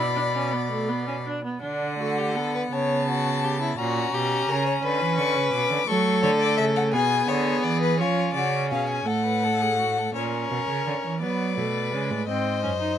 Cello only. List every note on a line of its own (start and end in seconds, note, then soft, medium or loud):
0.00 1.24 B2 medium
1.63 2.68 D3 medium
2.72 3.76 C#3 medium
3.78 4.12 A#2 medium
4.13 4.48 B2 medium
4.48 4.83 C#3 medium
4.83 5.02 D3 medium
5.01 5.20 E3 medium
5.18 5.37 D3 medium
5.36 5.53 C#3 medium
5.53 5.70 B2 medium
5.70 5.77 D3 medium
5.88 6.24 F#3 medium
6.23 6.60 D3 medium
6.58 6.95 C#3 medium
6.93 7.28 B2 medium
7.29 7.63 D3 medium
7.64 8.01 E3 medium
8.00 8.35 F3 medium
8.36 8.73 C#3 medium
8.71 9.06 B2 medium
9.07 10.13 A2 medium
10.15 10.49 A#2 medium
10.51 10.58 B2 medium
10.69 10.86 C#3 medium
10.86 10.94 D3 medium
11.04 11.24 E3 medium
11.22 11.59 F#3 medium
11.58 11.95 B2 medium
11.93 12.12 C#3 medium
12.11 12.27 A2 medium
12.28 12.65 G#2 medium
12.63 12.98 F#2 medium